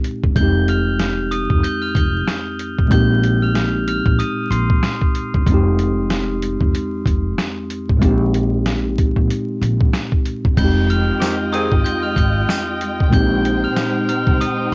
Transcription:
Already playing: tine electric piano A#2 G#3 C4 D#4 G4
0.04 closed hi-hat
0.23 upright bass E1, kick
0.35 upright bass F1, tine electric piano F2 G#3 C4, glockenspiel G6 G7, kick, closed hi-hat
0.41 tine electric piano D#4 G4
0.68 glockenspiel F6 F7, closed hi-hat
1.00 snare, closed hi-hat
1.31 glockenspiel D#6 D#7, closed hi-hat
1.50 upright bass F1, kick
1.63 glockenspiel G6 G7, closed hi-hat
1.82 glockenspiel F6 F7
1.95 upright bass F1, glockenspiel G6 G7, kick, closed hi-hat
2.28 snare, closed hi-hat
2.60 closed hi-hat
2.79 upright bass A1, kick
2.87 tine electric piano A#2 G#3 C4
2.91 upright bass A#1, tine electric piano D#4 G4, glockenspiel G6 G7, kick, closed hi-hat
3.24 closed hi-hat
3.42 glockenspiel F6 F7
3.55 snare, closed hi-hat
3.88 glockenspiel F6 F7, closed hi-hat
4.06 upright bass A#1, kick
4.19 glockenspiel D#6 D#7, closed hi-hat
4.51 upright bass A#1, glockenspiel C6 C7, closed hi-hat
4.70 kick
4.83 snare, closed hi-hat
5.02 kick
5.15 closed hi-hat
5.34 upright bass E1, kick
5.46 upright bass F1, tine electric piano F2 G#3 C4, kick, closed hi-hat
5.52 tine electric piano D#4 G4
5.79 closed hi-hat
6.10 snare, closed hi-hat
6.43 closed hi-hat
6.61 upright bass F1, kick
6.75 closed hi-hat
7.05 upright bass F1, kick, closed hi-hat
7.38 snare, closed hi-hat
7.70 closed hi-hat
7.89 upright bass A1, kick
7.97 tine electric piano A#2 G#3 C4
8.02 upright bass A#1, tine electric piano D#4 G4, kick, closed hi-hat
8.34 closed hi-hat
8.66 snare, closed hi-hat
8.98 kick, closed hi-hat
9.16 upright bass A#1, kick
9.30 closed hi-hat
9.61 upright bass A#1, closed hi-hat
9.81 kick
9.93 snare, closed hi-hat
10.12 kick
10.26 closed hi-hat
10.45 upright bass E1, kick
10.57 upright bass F1, tine electric piano F2 G#3 C4, string section G#3 F4 D#5 G5, glockenspiel G6 G7, kick, closed hi-hat, crash
10.62 tine electric piano D#4 G4
10.90 glockenspiel F6 F7, closed hi-hat
11.20 saxophone section D#3 C4 G4, snare, closed hi-hat, tambourine
11.52 saxophone section D#3 C4 G#4, glockenspiel D#6 D#7, closed hi-hat
11.72 upright bass G#1, kick
11.84 glockenspiel G6 G7, closed hi-hat
12.03 glockenspiel F6 F7
12.16 upright bass G#1, glockenspiel G6 G7, kick, closed hi-hat
12.49 snare, closed hi-hat, tambourine
12.81 closed hi-hat
13.00 kick
13.08 tine electric piano A#2 G#3 C4
13.13 upright bass A#1, string section D#4 C5, tine electric piano D#4 G4, glockenspiel G6 G7, kick, closed hi-hat
13.45 closed hi-hat
13.64 glockenspiel F6 F7
13.77 snare, closed hi-hat, tambourine
14.09 glockenspiel F6 F7, closed hi-hat
14.27 upright bass C2, kick
14.41 glockenspiel D#6 D#7, closed hi-hat

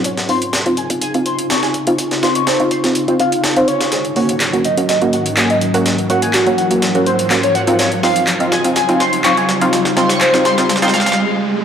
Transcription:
Already playing: synth stab C4 D#4 F4, riser
0.04 ambient pad C#3 C4 D#4 F4, analog synth lead C#5, kick, closed hi-hat
0.17 snare, closed hi-hat
0.29 synth stab C4 D#4 F4, analog synth lead C6, open hi-hat
0.42 closed hi-hat
0.53 snare, closed hi-hat
0.66 synth stab C4 D#4 F4, closed hi-hat
0.77 analog synth lead G#5, closed hi-hat
0.90 synth stab C4 D#4 F4, kick, closed hi-hat
1.01 analog synth lead G#5, closed hi-hat
1.14 synth stab C4 D#4 F4, closed hi-hat
1.26 analog synth lead C6, closed hi-hat
1.39 closed hi-hat
1.50 synth stab C4 D#4 F4, analog synth lead C#6, snare, closed hi-hat
1.63 analog synth lead G#5, snare, closed hi-hat
1.74 kick, closed hi-hat
1.87 synth stab C4 D#4 F4, closed hi-hat
1.98 kick, closed hi-hat
2.11 snare, closed hi-hat
2.23 synth stab C4 D#4 F4, analog synth lead C6, snare, closed hi-hat
2.35 analog synth lead C#6, closed hi-hat
2.47 analog synth lead C5, snare, closed hi-hat
2.60 synth stab C4 D#4 F4, closed hi-hat
2.71 analog synth lead C6, kick, closed hi-hat
2.84 synth stab C4 D#4 F4, snare, closed hi-hat
2.95 closed hi-hat
3.08 synth stab C4 D#4 F4, analog synth lead C5, kick, closed hi-hat
3.20 synth stab C4 D#4 F4, analog synth lead F5, closed hi-hat
3.32 closed hi-hat
3.44 snare, closed hi-hat
3.56 synth stab C4 D#4 F4, analog synth lead C5, closed hi-hat
3.68 analog synth lead C#5, closed hi-hat
3.81 analog synth lead C#5, snare, closed hi-hat
3.92 ambient pad G#2 F#3 C#4 A#4, analog synth lead G#4, snare, closed hi-hat
4.05 closed hi-hat
4.16 synth stab A#3 C#4 F#4, analog synth lead C#5, open hi-hat
4.29 closed hi-hat
4.40 snare, clap, closed hi-hat
4.53 synth stab A#3 C#4 F#4, closed hi-hat
4.64 analog synth lead D#5, closed hi-hat
4.77 synth stab A#3 C#4 F#4, closed hi-hat
4.89 analog synth lead D#5, snare, closed hi-hat
5.02 synth stab A#3 C#4 F#4, closed hi-hat
5.13 analog synth lead F#5, closed hi-hat
5.26 closed hi-hat
5.37 synth stab A#3 C#4 F#4, analog synth lead G#5, snare, clap, closed hi-hat
5.50 analog synth lead D#5, closed hi-hat
5.61 closed hi-hat
5.74 synth stab A#3 C#4 F#4, closed hi-hat
5.86 snare, closed hi-hat
5.98 closed hi-hat
6.10 synth stab A#3 C#4 F#4, analog synth lead F#5, closed hi-hat
6.22 analog synth lead G#5, closed hi-hat
6.34 analog synth lead F#4, snare, clap, closed hi-hat
6.46 synth stab A#3 C#4 F#4, closed hi-hat
6.58 analog synth lead F#5, closed hi-hat
6.71 synth stab A#3 C#4 F#4, closed hi-hat
6.82 snare, closed hi-hat
6.95 synth stab A#3 C#4 F#4, analog synth lead F#4, closed hi-hat
7.06 analog synth lead C5, closed hi-hat
7.19 closed hi-hat
7.31 synth stab A#3 C#4 F#4, snare, clap, closed hi-hat
7.43 analog synth lead C#5, closed hi-hat
7.55 analog synth lead F#5, closed hi-hat
7.67 synth stab C4 D#4 F4, closed hi-hat
7.79 ambient pad C#3 C4 D#4 F4, analog synth lead C#5, snare, closed hi-hat
7.92 closed hi-hat
8.03 synth stab C4 D#4 F4, analog synth lead F5, snare, open hi-hat
8.16 closed hi-hat
8.27 snare, clap, closed hi-hat
8.40 synth stab C4 D#4 F4, closed hi-hat
8.52 analog synth lead G#5, snare, closed hi-hat
8.64 synth stab C4 D#4 F4, closed hi-hat
8.76 analog synth lead G#5, snare, closed hi-hat
8.89 synth stab C4 D#4 F4, closed hi-hat
9.00 analog synth lead C6, snare, closed hi-hat
9.13 closed hi-hat
9.24 synth stab C4 D#4 F4, analog synth lead C#6, snare, clap, closed hi-hat
9.37 analog synth lead G#5, closed hi-hat
9.49 snare, closed hi-hat
9.61 synth stab C4 D#4 F4, closed hi-hat
9.73 snare, closed hi-hat
9.85 snare, closed hi-hat
9.97 synth stab C4 D#4 F4, analog synth lead C6, snare, closed hi-hat
10.09 analog synth lead C#6, snare, closed hi-hat
10.21 analog synth lead C5, snare, clap, closed hi-hat
10.34 synth stab C4 D#4 F4, snare, closed hi-hat
10.45 analog synth lead C6, snare, closed hi-hat
10.58 synth stab C4 D#4 F4, snare, closed hi-hat
10.69 snare, closed hi-hat
10.76 snare
10.82 synth stab C4 D#4 F4, analog synth lead C5, snare, closed hi-hat
10.88 snare
10.94 analog synth lead F5, snare, closed hi-hat
11.00 snare
11.06 snare, closed hi-hat
11.12 snare

